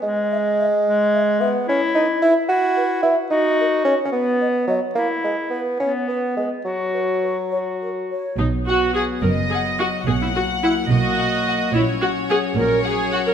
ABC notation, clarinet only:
X:1
M:6/8
L:1/8
Q:3/8=72
K:E
V:1 name="Clarinet"
G,3 G,3 | [K:B] E3 E3 | F3 B,3 | E3 B,3 |
F3 F3 | z6 | z6 | z6 |]